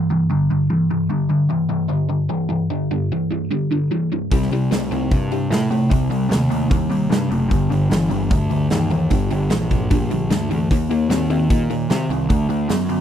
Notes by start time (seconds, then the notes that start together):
0.10 G2 E3
0.30 G2 D3
0.50 G2 D3
0.70 G2 E3
0.91 G2 E3
1.10 G2 D3
1.30 G2 D3
1.50 G2 E3
1.70 G2 E3
1.89 G2 D3
2.09 G2 D3
2.29 G2 E3
2.49 G2 E3
2.70 G2 D3
2.91 G2 D3
3.12 G2 E3
3.31 G2 E3
3.51 G2 D3
3.71 G2 D3
3.91 G2 E3
4.12 G2 E3
4.32 C2 C3 G3, kick, open hi-hat
4.42 snare
4.51 C2 C3 G3, open hi-hat
4.71 C2 C3 A3, snare, open hi-hat
4.91 C2 C3 A3, open hi-hat
5.11 G2 C3 G3, kick, open hi-hat
5.32 C3 G3, open hi-hat
5.50 A2 C3 A3, snare, open hi-hat
5.71 A2 C3 A3, open hi-hat
5.90 C2 C3 G3, kick, open hi-hat
6.10 C2 C3 G3, open hi-hat
6.29 D#2 C3 A3, snare, open hi-hat
6.50 C3 A3, open hi-hat
6.70 D#2 C3 G3, kick, open hi-hat
6.90 D#2 C3 G3, open hi-hat
7.10 G2 C3 A3, snare, open hi-hat
7.29 F#1 C3 A3, open hi-hat
7.49 G1 G2 D3, kick, open hi-hat
7.70 G1 G2 D3, open hi-hat
7.90 G1 G2 E3, snare, open hi-hat
8.09 G1 G2 E3, open hi-hat
8.30 D2 G2 D3, kick, open hi-hat
8.50 G2 D3, open hi-hat
8.70 D#2 G2 E3, snare, open hi-hat
8.91 D#2 G2 E3, open hi-hat
9.10 G1 G2 D3, kick, open hi-hat
9.31 G1 G2 D3, open hi-hat
9.50 A#1 G2 E3, snare, open hi-hat
9.71 G2 E3, kick, open hi-hat
9.90 A#1 G2 D3, kick, open hi-hat
10.10 A#1 G2 D3, open hi-hat
10.30 D2 G2 E3, snare, open hi-hat
10.51 D2 G2 E3, open hi-hat
10.71 D#2 D#3 A#3, kick, open hi-hat
10.90 D#2 D#3 A#3, open hi-hat
11.09 D#2 D#3 C4, snare, open hi-hat
11.30 D#2 D#3 C4, open hi-hat
11.50 A#2 D#3 A#3, kick, open hi-hat
11.70 D#3 A#3, open hi-hat
11.90 C3 D#3 C4, snare, open hi-hat
12.09 C2 D#3 C4, open hi-hat
12.29 D2 D3 A3, kick, open hi-hat
12.49 D2 D3 A3, open hi-hat
12.69 F#2 D3 B3, snare, open hi-hat
12.89 D3 B3, open hi-hat